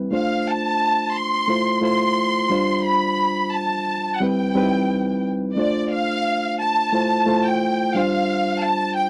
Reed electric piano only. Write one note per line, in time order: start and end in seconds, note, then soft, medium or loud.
0.00 0.14 G3 medium
0.00 0.13 C4 medium
0.00 0.14 E4 medium
0.00 0.13 B4 medium
0.11 1.11 A3 medium
0.11 1.12 D4 medium
0.11 1.12 F4 medium
0.11 1.12 C5 medium
1.48 1.76 A3 medium
1.48 1.76 E4 medium
1.48 1.77 F4 medium
1.48 1.77 C5 medium
1.81 2.50 A3 medium
1.81 2.51 E4 medium
1.81 2.50 F4 medium
1.81 2.51 C5 medium
2.50 3.60 G3 medium
2.50 3.60 D4 medium
2.50 3.61 F4 medium
2.50 3.61 C5 medium
4.20 4.48 G3 medium
4.20 4.49 C4 medium
4.20 4.49 E4 medium
4.20 4.50 B4 medium
4.55 5.30 G3 medium
4.55 5.30 C4 medium
4.55 4.63 D#4 soft
4.55 5.31 B4 medium
4.63 5.34 E4 medium
5.56 6.57 A3 medium
5.56 6.57 D4 medium
5.56 6.57 F4 medium
5.56 6.58 C5 medium
6.92 7.21 A3 medium
6.92 7.21 E4 medium
6.92 7.22 F4 medium
6.92 7.22 C5 medium
7.26 7.95 A3 medium
7.26 7.95 E4 medium
7.26 7.95 F4 medium
7.26 7.96 C5 medium
7.95 9.05 G3 medium
7.95 9.05 D4 medium
7.95 9.05 F4 medium
7.95 9.06 C5 medium